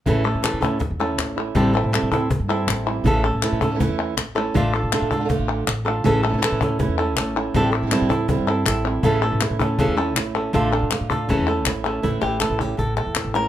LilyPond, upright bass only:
\new Staff \with { instrumentName = "Upright bass" } { \clef bass \time 4/4 \tempo 4 = 160 a,,8. a,8 a,4 e,8. a,,4 | a,,8. a,8 a,4 g,8. a,,4 | a,,8. a,8 a,4 e,8. a,,4 | a,,8. a,8 a,4 a,,8. a,,4 |
a,,8. a,8 a,4 e,8. a,,4 | a,,8. a,8 a,4 g,8. a,,4 | a,,8. a,8 a,4 e,8. a,,4 | a,,8. a,8 a,8. a,,16 e,8. a,,4 |
a,,8 a,,8. a,,8. a,,8. e,8 a,,8. | }